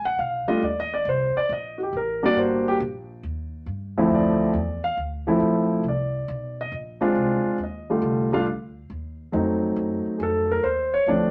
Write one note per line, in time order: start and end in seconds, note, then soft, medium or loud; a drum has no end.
0.00 0.17 A#1 medium
0.05 0.18 F#5 medium
0.19 0.46 B1 medium
0.19 0.47 F5 medium
0.48 0.60 G3 medium
0.48 0.60 A3 medium
0.48 0.60 D4 medium
0.48 0.60 F4 medium
0.48 0.61 D#5 medium
0.48 muted upright bass stroke soft
0.62 1.04 D#2 medium
0.62 0.77 D5 medium
0.80 0.92 D#5 loud
0.94 1.06 D5 medium
1.05 1.32 C2 medium
1.05 1.36 C5 medium
1.35 1.49 D5 medium
1.35 muted upright bass stroke soft
1.49 1.91 A#1 medium
1.49 1.79 D#5 medium
1.83 1.94 G4 medium
1.93 2.35 A1 medium
1.97 2.23 A#4 medium
2.23 2.77 G3 medium
2.23 2.77 A#3 medium
2.23 2.77 D4 medium
2.23 2.77 F#4 medium
2.23 2.37 D5 medium
2.35 2.78 G1 medium
2.35 2.66 C5 medium
2.68 2.76 G4 medium
2.80 3.22 A#1 medium
3.23 3.65 D#2 medium
3.66 4.09 G2 medium
3.98 4.51 D2 medium
3.98 4.51 F3 medium
3.98 4.52 A3 medium
3.98 4.52 C4 medium
3.98 4.52 E4 medium
4.10 4.37 F2 medium
4.14 4.81 D5 medium
4.40 muted upright bass stroke soft
4.54 4.96 E2 medium
4.84 4.97 F5 medium
4.97 5.39 D2 medium
5.27 5.82 F3 medium
5.27 5.82 A3 medium
5.27 5.82 C4 medium
5.27 5.82 E4 medium
5.40 5.82 A#1 medium
5.84 6.26 C2 medium
5.88 6.55 D5 medium
6.28 6.70 B1 medium
6.61 6.73 D#5 medium
6.72 7.14 A#1 medium
7.01 7.56 G#3 medium
7.01 7.56 C4 medium
7.01 7.56 D4 medium
7.01 7.56 F4 medium
7.15 7.42 C2 medium
7.45 muted upright bass stroke soft
7.58 8.01 D#2 medium
7.64 8.30 D#5 medium
7.90 8.30 D3 medium
7.90 8.30 G3 medium
7.90 8.30 A3 medium
7.90 8.30 F4 medium
8.02 8.44 C2 medium
8.32 8.45 G3 medium
8.32 8.45 A3 medium
8.32 8.45 D4 medium
8.32 8.45 F4 medium
8.32 8.42 F5 medium
8.46 8.88 D2 medium
8.90 9.32 D#2 medium
9.32 9.75 F2 medium
9.32 10.55 F#3 medium
9.32 10.55 A3 medium
9.32 10.56 C4 medium
9.32 10.56 D#4 medium
9.76 10.04 F#2 medium
10.06 muted upright bass stroke soft
10.18 10.62 F2 medium
10.18 10.21 G#4 soft
10.23 10.50 A4 medium
10.51 10.64 A#4 medium
10.63 11.06 D#2 medium
10.63 10.92 C5 medium
10.94 11.07 C#5 medium
11.06 11.31 D2 medium
11.06 11.31 F3 medium
11.06 11.31 A3 medium
11.06 11.31 C4 medium
11.06 11.31 D4 medium
11.06 11.31 D5 medium